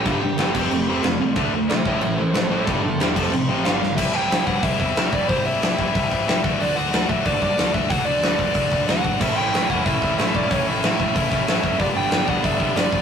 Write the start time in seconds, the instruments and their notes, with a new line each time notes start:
0.06 picked electric bass G1, distorted electric guitar G2 D3 G3, overdriven electric guitar G4, kick, crash
0.23 picked electric bass G1, distorted electric guitar G2 D3
0.38 picked electric bass G1, distorted electric guitar G2 D3 G3, snare, crash
0.55 picked electric bass F1, distorted electric guitar F2 C3 F3 A3 C4, kick, crash
0.71 picked electric bass F1, distorted electric guitar F2 C3 F3 A3, crash
0.87 distorted electric guitar F2 C3 F3 A3 C4
1.03 picked electric bass F1, distorted electric guitar F2 C3 F3 A3, snare, crash
1.19 picked electric bass C2, distorted electric guitar F2 C3 F3 A3
1.36 picked electric bass D2, distorted electric guitar D3 A3 D4, kick, crash
1.53 picked electric bass D2, distorted electric guitar D3 A3
1.69 picked electric bass B1, distorted electric guitar D3 A3, overdriven electric guitar C5 E5, snare, crash
1.85 picked electric bass A1, distorted electric guitar A2 E3 A3, overdriven electric guitar C#5 E5, kick
2.01 picked electric bass A1, distorted electric guitar A2 E3, overdriven electric guitar C#5 E5, crash
2.16 distorted electric guitar A2 E3, overdriven electric guitar A4 C5
2.32 picked electric bass A1, distorted electric guitar A2 E3, overdriven electric guitar A4 C5, snare, crash
2.50 picked electric bass A1, distorted electric guitar A2 E3 A3, overdriven electric guitar A4 C5
2.67 picked electric bass G1, distorted electric guitar G2 D3 G3, overdriven electric guitar E4 A4, kick, crash
2.84 picked electric bass G1, distorted electric guitar G2 D3, overdriven electric guitar E4 A4
3.00 picked electric bass E1, distorted electric guitar G2 D3 G3, overdriven electric guitar E4 A4, snare, crash
3.16 picked electric bass F1, distorted electric guitar F2 C3 F3, overdriven electric guitar A4, kick, crash
3.32 picked electric bass A1, distorted electric guitar F2 C3, crash
3.49 distorted electric guitar F2 C3 F3
3.65 picked electric bass G1, distorted electric guitar G2 D3 G3, overdriven electric guitar F5, snare, crash
3.81 picked electric bass G1, distorted electric guitar G2 D3, snare
3.96 picked electric bass C2, distorted electric guitar C3 E3 G3 C4 E4, overdriven electric guitar E5, kick, crash
4.14 picked electric bass C2, distorted electric guitar C3 E3 G3 C4 E4, overdriven electric guitar G5
4.30 picked electric bass C2, distorted electric guitar C3 E3 G3 C4 E4, snare, open hi-hat
4.46 picked electric bass G2, distorted electric guitar C3 E3 G3 C4 E4, overdriven electric guitar F#5, kick
4.63 picked electric bass C2, distorted electric guitar C3 E3 G3 C4 E4, overdriven electric guitar E5, kick, open hi-hat
4.80 picked electric bass E2, distorted electric guitar C3 E3 G3 C4 E4, overdriven electric guitar E5, kick
4.96 picked electric bass C2, distorted electric guitar C3 E3 G3 C4 E4, snare, open hi-hat
5.12 picked electric bass C2, distorted electric guitar C3 E3 G3 C4 E4, overdriven electric guitar D5, kick
5.28 picked electric bass C2, distorted electric guitar C3 E3 G3 C4 E4, overdriven electric guitar C5, kick, open hi-hat
5.44 picked electric bass C2, distorted electric guitar C3 E3 G3 C4 E4, overdriven electric guitar E5
5.60 picked electric bass C2, distorted electric guitar C3 E3 G3 C4 E4, snare, open hi-hat
5.77 picked electric bass C2, distorted electric guitar C3 E3 G3 C4 E4, kick
5.94 picked electric bass C2, distorted electric guitar C3 E3 G3 C4 E4, kick, open hi-hat
6.10 picked electric bass C2, distorted electric guitar C3 E3 G3 C4 E4, kick
6.27 picked electric bass C2, distorted electric guitar C3 E3 G3 C4 E4, overdriven electric guitar E5, snare, open hi-hat
6.43 picked electric bass D2, distorted electric guitar D3 A3 D4 F#4, kick
6.60 picked electric bass D2, distorted electric guitar D3 A3 D4 F#4, overdriven electric guitar D5, open hi-hat
6.75 picked electric bass D2, distorted electric guitar D3 A3 D4 F#4, overdriven electric guitar F#5
6.91 picked electric bass D2, distorted electric guitar D3 A3 D4 F#4, snare, open hi-hat
7.08 picked electric bass A2, distorted electric guitar D3 A3 D4 F#4, overdriven electric guitar E5, kick
7.25 picked electric bass D2, distorted electric guitar D3 A3 D4 F#4, overdriven electric guitar D5, kick, open hi-hat
7.42 picked electric bass G2, distorted electric guitar D3 A3 D4 F#4, overdriven electric guitar D5, kick
7.57 picked electric bass D2, distorted electric guitar D3 A3 D4 F#4, snare, open hi-hat
7.72 picked electric bass D2, distorted electric guitar D3 A3 D4 F#4, overdriven electric guitar E5, kick
7.89 picked electric bass D2, distorted electric guitar D3 A3 D4 F#4, overdriven electric guitar F#5, kick, open hi-hat
8.05 picked electric bass D2, distorted electric guitar D3 A3 D4 F#4, overdriven electric guitar D5
8.22 picked electric bass D2, distorted electric guitar D3 A3 D4 F#4, snare, open hi-hat
8.38 picked electric bass D2, distorted electric guitar D3 A3 D4 F#4, kick
8.54 picked electric bass D2, distorted electric guitar D3 A3 D4 F#4, kick, open hi-hat
8.71 picked electric bass D2, distorted electric guitar D3 A3 D4 F#4, kick
8.87 picked electric bass D2, distorted electric guitar D3 A3 D4 F#4, overdriven electric guitar F#5, snare, open hi-hat
9.04 picked electric bass G#1, distorted electric guitar D3 A3 D4 F#4, kick
9.20 picked electric bass A1, distorted electric guitar A2 E3 A3 C#4 E4, overdriven electric guitar E5, kick, crash
9.37 picked electric bass A1, distorted electric guitar A2 E3 A3 C#4 E4, overdriven electric guitar G5
9.53 picked electric bass A1, distorted electric guitar A2 E3 A3 C#4 E4, snare, open hi-hat
9.70 picked electric bass E2, distorted electric guitar A2 E3 A3 C#4 E4, overdriven electric guitar F#5, kick
9.85 picked electric bass A1, distorted electric guitar A2 E3 A3 C#4 E4, overdriven electric guitar E5, kick, open hi-hat
10.02 picked electric bass D2, distorted electric guitar A2 E3 A3 C#4 E4, overdriven electric guitar E5, kick
10.18 picked electric bass A1, distorted electric guitar A2 E3 A3 C#4 E4, overdriven electric guitar E5, snare, open hi-hat
10.35 picked electric bass A1, distorted electric guitar A2 E3 A3 C#4 E4, overdriven electric guitar D5, kick
10.51 picked electric bass A1, distorted electric guitar A2 E3 A3 C#4 E4, overdriven electric guitar C#5, kick, open hi-hat
10.68 picked electric bass A1, distorted electric guitar A2 E3 A3 C#4 E4, overdriven electric guitar E5
10.83 picked electric bass A1, distorted electric guitar A2 E3 A3 C#4 E4, snare, open hi-hat
10.99 picked electric bass A1, distorted electric guitar A2 E3 A3 C#4 E4, kick
11.16 picked electric bass A1, distorted electric guitar A2 E3 A3 C#4 E4, kick, open hi-hat
11.31 picked electric bass A1, distorted electric guitar A2 E3 A3 C#4 E4, kick
11.47 picked electric bass A1, distorted electric guitar A2 E3 A3 C#4 E4, overdriven electric guitar E5, snare, open hi-hat
11.63 picked electric bass F#1, distorted electric guitar A2 E3 A3 C#4 E4, kick
11.79 picked electric bass G1, distorted electric guitar G2 D3 G3 B3 D4, overdriven electric guitar D5, kick, open hi-hat
11.95 picked electric bass G1, distorted electric guitar G2 D3 G3 B3 D4, overdriven electric guitar G5
12.11 picked electric bass G1, distorted electric guitar G2 D3 G3 B3 D4, snare, open hi-hat
12.28 picked electric bass D2, distorted electric guitar G2 D3 G3 B3 D4, overdriven electric guitar F#5, kick
12.43 picked electric bass G1, distorted electric guitar G2 D3 G3 B3 D4, overdriven electric guitar E5, kick, open hi-hat
12.58 picked electric bass B1, distorted electric guitar G2 D3 G3 B3 D4, kick
12.75 picked electric bass G1, distorted electric guitar G2 D3 G3 B3 D4, overdriven electric guitar D5, snare, open hi-hat
12.91 picked electric bass G1, distorted electric guitar G2 D3 G3 B3 D4, kick